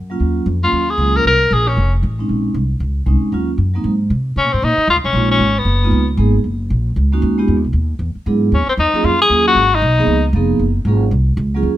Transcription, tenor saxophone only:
0.64 0.91 F4 medium
0.90 1.18 G#4 medium
1.17 1.26 A#4 medium
1.27 1.55 A#4 medium
1.53 1.69 G#4 medium
1.68 1.93 C#4 medium
4.38 4.54 C#4 medium
4.53 4.65 C4 medium
4.64 4.89 D#4 medium
4.90 4.97 F4 medium
5.05 5.29 C#4 medium
5.31 5.60 C#4 medium
5.58 6.09 B3 medium
8.54 8.68 C#4 medium
8.69 8.73 C4 medium
8.79 9.07 D#4 medium
9.06 9.20 F4 medium
9.21 9.45 G#4 medium
9.48 9.77 F#4 loud
9.75 10.25 D#4 medium

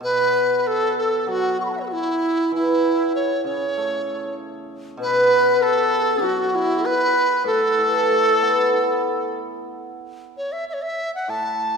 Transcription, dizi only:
0.03 0.59 B4 medium
0.59 0.69 B4 medium
0.67 0.98 A4 medium
0.98 1.22 A4 medium
1.22 1.31 A4 medium
1.29 1.60 F#4 medium
1.61 1.64 C#6 soft
1.65 1.70 B5 soft
1.70 1.77 F#5 soft
1.70 1.72 A5 soft
1.77 1.83 C#5 soft
1.77 1.79 E5 soft
1.83 1.88 A4 soft
1.83 1.86 B4 soft
1.88 1.94 F#4 medium
1.92 2.54 E4 medium
2.55 3.13 E4 medium
3.15 3.44 C#5 medium
3.45 4.34 C#5 medium
5.02 5.64 B4 medium
5.63 6.25 A4 loud
6.24 6.57 F#4 medium
6.55 6.87 E4 medium
6.85 7.46 B4 medium
7.46 9.33 A4 medium
10.37 10.54 C#5 medium
10.52 10.67 E5 medium
10.69 10.75 E5 medium
10.73 10.84 C#5 medium
10.83 11.14 E5 medium
11.15 11.31 F#5 medium
11.30 11.76 A5 medium

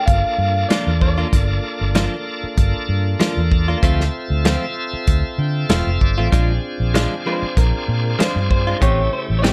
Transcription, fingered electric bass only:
0.08 0.21 G1 loud
0.38 0.64 G2 medium
0.87 1.24 E2 medium
1.33 1.58 G1 medium
1.81 2.06 G1 medium
2.43 muted fingered electric bass stroke soft
2.57 2.71 G1 loud
2.89 3.14 G2 medium
3.37 3.74 E2 medium
3.83 4.08 D2 medium
4.30 4.56 D2 loud
4.93 muted fingered electric bass stroke soft
5.08 5.21 D2 loud
5.38 5.64 D3 medium
5.69 5.85 E1 medium
5.87 5.99 F1 medium
6.01 6.16 G1 medium
6.18 6.30 A1 medium
6.32 6.57 A#1 medium
6.80 7.05 A#1 medium
7.42 muted fingered electric bass stroke soft
7.57 7.71 A#1 loud
7.88 8.13 A#2 medium
8.36 8.73 G2 medium
8.81 9.07 A1 medium
9.30 9.53 A1 medium

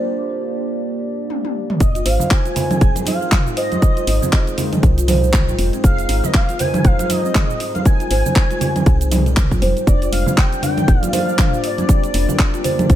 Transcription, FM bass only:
1.80 2.02 F1 loud
2.06 2.18 G#1 medium
2.81 2.93 F1 medium
4.07 4.19 G#1 medium
4.83 5.56 C2 loud
5.58 5.71 F1 medium
5.84 6.05 F1 loud
6.09 6.21 G#1 medium
6.85 6.97 F1 medium
8.11 8.23 G#1 medium
8.86 9.59 C2 loud
9.62 9.74 F1 medium
9.87 10.09 F1 loud
10.12 10.25 F1 medium
10.88 11.00 F1 medium
12.14 12.26 F1 medium
12.90 12.95 C2 loud

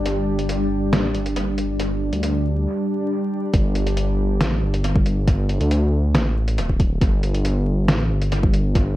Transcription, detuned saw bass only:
0.06 0.94 G1 loud
0.93 1.16 A1 medium
1.15 2.11 G1 loud
2.13 2.67 D2 medium
3.54 4.42 G1 loud
4.41 4.64 A1 medium
4.62 5.59 G1 loud
5.61 6.16 D2 medium
6.15 6.60 A1 loud
6.58 7.00 D1 loud
7.01 7.90 G1 loud
7.88 8.12 A1 medium
8.10 8.97 G1 loud

